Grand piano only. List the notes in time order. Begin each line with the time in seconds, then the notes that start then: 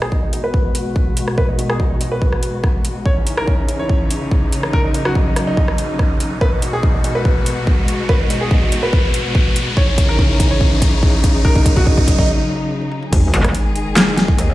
0.02 G#4
0.12 D#4
0.23 D#4
0.33 D#4
0.44 B4
1.38 B4
1.49 D#4
1.59 D#4
1.70 G#4
1.80 D#4
1.91 D#4
2.01 D#4
2.12 B4
3.06 C#5
3.16 C#4
3.27 C#4
3.38 A#4
3.48 C#4
3.59 C#4
3.69 C#4
3.79 C#5
4.74 A#4
4.84 D#4
4.95 D#4
5.05 F#4
5.15 D#4
5.26 D#4
5.36 D#4
5.47 D#4
6.41 B4
6.52 D#4
6.62 D#4
6.73 G#4
6.83 D#4
6.94 D#4
7.04 D#4
7.15 B4
8.09 B4
8.20 D#4
8.30 D#4
8.41 G#4
8.51 D#4
8.62 D#4
8.72 D#4
8.83 B4
9.77 C#5
9.88 C#4
9.98 C#4
10.09 A#4
10.19 C#4
10.30 C#4
10.40 C#4
10.51 C#5
11.45 A#4
11.56 D#4
11.66 D#4
11.77 F#4
11.87 D#4
11.98 D#4
12.08 D#4
12.19 D#4